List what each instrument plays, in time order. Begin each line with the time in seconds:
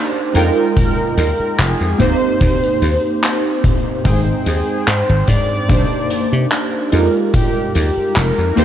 Already playing: synth keys A#3 D4 D#4 G4 C5, soft synth lead D5
0.33 slap bass F2, synth keys G#3 D#4 F4 A#4 G5, closed hi-hat
0.77 soft synth lead A#4, kick, closed hi-hat
1.17 slap bass D#2, soft synth lead A#4, closed hi-hat
1.40 muted slap bass stroke
1.58 slap bass F1, soft synth lead G#4, clap, closed hi-hat
1.81 slap bass F2
1.98 slap bass D#2, synth keys A#3 C4 D#4 G4 C5, soft synth lead C5, kick, closed hi-hat
2.41 slap bass D#2, kick, closed hi-hat
2.63 closed hi-hat
2.82 slap bass D#2, closed hi-hat
3.23 clap, closed hi-hat
3.64 kick, closed hi-hat
4.04 slap bass G#1, synth keys G#3 C4 D#4 C5 G5, soft synth lead G#4, kick, closed hi-hat
4.46 slap bass D#2, soft synth lead G#4, closed hi-hat
4.87 slap bass G#2, soft synth lead C5, clap, closed hi-hat
5.09 slap bass G#1
5.28 slap bass G#2, soft synth lead D5, kick, closed hi-hat
5.68 slap bass C2, synth keys A#3 D4 D#4 G4 C5, kick, closed hi-hat
6.10 closed hi-hat
6.33 slap bass C3
6.52 clap, closed hi-hat
6.91 slap bass F2, synth keys G#3 D#4 F4 G4 A#4, closed hi-hat
7.34 soft synth lead G4, kick, closed hi-hat
7.75 slap bass D#2, soft synth lead G4, closed hi-hat
7.97 muted slap bass stroke
8.16 slap bass F1, soft synth lead A#4, clap, closed hi-hat
8.38 slap bass F2
8.55 slap bass D#2, synth keys A#3 C4 D#4 G4 C5, soft synth lead C5, closed hi-hat